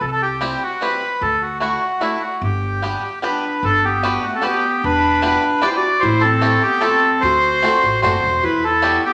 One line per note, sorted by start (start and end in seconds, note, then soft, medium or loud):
0.01 0.53 C2 medium
0.01 0.06 A4 medium
0.07 0.10 A4 medium
0.12 0.22 A4 medium
0.22 0.63 G4 medium
0.41 0.61 G3 medium
0.41 0.62 C4 medium
0.41 0.62 E4 medium
0.41 0.62 G4 medium
0.63 0.82 F#4 medium
0.81 1.02 G3 medium
0.81 1.02 C4 medium
0.81 1.02 E4 soft
0.81 1.02 G4 medium
0.81 1.23 B4 loud
1.21 1.74 D2 medium
1.21 1.43 A4 medium
1.42 1.58 F#4 medium
1.60 1.81 A3 medium
1.60 1.82 D4 medium
1.60 1.82 E4 medium
1.60 2.02 F#4 medium
1.60 1.82 F#4 medium
2.00 2.22 A3 medium
2.00 2.22 D4 medium
2.00 2.22 E4 medium
2.00 2.22 F#4 medium
2.21 2.42 F#4 medium
2.42 2.94 G1 loud
2.42 3.19 G4 medium
2.82 3.03 G3 medium
2.82 3.03 B3 medium
2.82 3.03 D4 medium
2.82 3.03 G4 medium
3.22 3.43 G3 medium
3.22 3.43 B3 medium
3.22 3.44 D4 medium
3.22 3.61 D4 medium
3.22 3.44 G4 medium
3.22 3.65 B4 medium
3.63 4.15 G1 medium
3.63 3.83 D4 medium
3.63 3.85 A4 loud
3.85 4.22 B3 medium
3.85 4.26 G4 medium
4.03 4.24 B3 medium
4.03 4.24 D4 medium
4.03 4.24 F#4 medium
4.03 4.24 G4 medium
4.03 4.24 B4 medium
4.23 4.36 A3 medium
4.23 4.37 F#4 medium
4.35 4.44 C4 medium
4.35 4.43 A4 medium
4.42 4.63 B3 medium
4.42 4.82 B3 medium
4.42 4.63 D4 medium
4.42 4.63 F#4 medium
4.42 4.64 G4 medium
4.42 4.85 G4 loud
4.42 4.64 B4 medium
4.83 5.35 E1 medium
4.83 5.59 D4 loud
4.83 5.66 B4 loud
5.22 5.43 B3 medium
5.22 5.43 D4 medium
5.22 5.43 E4 medium
5.22 5.43 G4 medium
5.22 5.43 B4 medium
5.62 5.83 B3 medium
5.62 5.83 D4 medium
5.62 5.83 E4 medium
5.62 5.83 G4 medium
5.62 5.69 G4 medium
5.62 5.83 B4 medium
5.62 5.70 D5 loud
5.67 5.76 E4 medium
5.67 5.76 C5 medium
5.76 6.01 F#4 medium
5.76 6.03 D5 loud
6.00 6.54 A1 loud
6.00 6.21 E4 loud
6.00 6.22 C5 medium
6.21 6.61 C4 medium
6.21 6.63 A4 loud
6.41 6.62 A3 medium
6.41 6.62 C4 medium
6.41 6.62 E4 medium
6.41 6.63 G4 medium
6.41 6.63 A4 medium
6.63 6.82 B3 medium
6.63 6.83 G4 loud
6.80 7.02 A3 medium
6.80 7.02 C4 medium
6.80 7.02 E4 medium
6.80 7.02 G4 medium
6.80 7.22 A4 loud
6.80 7.03 A4 medium
6.85 7.21 C4 medium
7.21 7.62 D2 loud
7.21 7.99 F#4 loud
7.21 8.01 C5 loud
7.63 7.83 A3 medium
7.63 7.83 C4 medium
7.63 7.83 D4 medium
7.63 7.83 F#4 soft
7.63 7.83 A4 medium
7.84 8.01 A1 medium
8.02 8.22 F#1 medium
8.02 8.23 A3 medium
8.02 8.23 C4 soft
8.02 8.23 D4 medium
8.02 8.41 F#4 medium
8.02 8.24 F#4 medium
8.02 8.24 A4 medium
8.02 8.44 C5 loud
8.23 8.41 E1 medium
8.43 8.95 E2 medium
8.43 8.62 E4 medium
8.43 8.64 B4 medium
8.64 9.02 E4 medium
8.64 9.01 A4 medium
8.82 9.03 G3 medium
8.82 9.03 B3 medium
8.82 9.03 E4 medium
8.82 9.04 F#4 medium
8.82 9.04 G4 medium
9.05 9.13 B3 medium
9.05 9.13 G4 loud